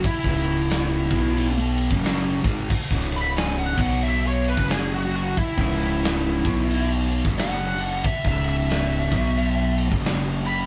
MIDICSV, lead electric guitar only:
0, 0, Header, 1, 2, 480
1, 0, Start_track
1, 0, Key_signature, 4, "minor"
1, 0, Tempo, 667408
1, 28, Time_signature, 4, 2, 24, 8
1, 7667, End_track
2, 0, Start_track
2, 0, Title_t, "Lead electric guitar"
2, 0, Program_c, 0, 29
2, 42, Note_on_c, 0, 64, 96
2, 190, Note_off_c, 0, 64, 0
2, 208, Note_on_c, 0, 64, 104
2, 1126, Note_off_c, 0, 64, 0
2, 2277, Note_on_c, 0, 83, 107
2, 2424, Note_on_c, 0, 80, 99
2, 2425, Note_off_c, 0, 83, 0
2, 2575, Note_off_c, 0, 80, 0
2, 2578, Note_on_c, 0, 78, 102
2, 2728, Note_off_c, 0, 78, 0
2, 2737, Note_on_c, 0, 78, 91
2, 2895, Note_off_c, 0, 78, 0
2, 2900, Note_on_c, 0, 76, 92
2, 3056, Note_off_c, 0, 76, 0
2, 3073, Note_on_c, 0, 73, 98
2, 3223, Note_off_c, 0, 73, 0
2, 3227, Note_on_c, 0, 71, 97
2, 3380, Note_off_c, 0, 71, 0
2, 3390, Note_on_c, 0, 68, 94
2, 3542, Note_off_c, 0, 68, 0
2, 3551, Note_on_c, 0, 66, 86
2, 3700, Note_off_c, 0, 66, 0
2, 3709, Note_on_c, 0, 66, 92
2, 3861, Note_off_c, 0, 66, 0
2, 3871, Note_on_c, 0, 64, 96
2, 4022, Note_off_c, 0, 64, 0
2, 4033, Note_on_c, 0, 64, 101
2, 4960, Note_off_c, 0, 64, 0
2, 5316, Note_on_c, 0, 78, 116
2, 5776, Note_off_c, 0, 78, 0
2, 5798, Note_on_c, 0, 76, 108
2, 5942, Note_off_c, 0, 76, 0
2, 5951, Note_on_c, 0, 76, 91
2, 6097, Note_off_c, 0, 76, 0
2, 6106, Note_on_c, 0, 76, 107
2, 7038, Note_off_c, 0, 76, 0
2, 7527, Note_on_c, 0, 83, 97
2, 7667, Note_off_c, 0, 83, 0
2, 7667, End_track
0, 0, End_of_file